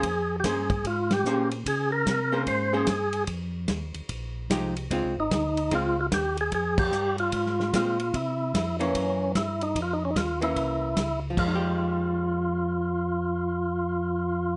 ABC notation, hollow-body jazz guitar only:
X:1
M:4/4
L:1/8
Q:"Swing" 1/4=148
K:Fm
V:1 name="Hollow-body jazz guitar"
z2 [B,DAc] z3 [B,DAc] z | z3 [B,DAc]2 [B,DAc] z2 | z6 [F,A,EG] z | [A,CF] z3 [A,CF] z3 |
z6 [A,CF] z | z3 [=E,B,D]3 z2 | z3 [=E,B,D]3 z2 | [F,A,EG]8- |
[F,A,EG]8 |]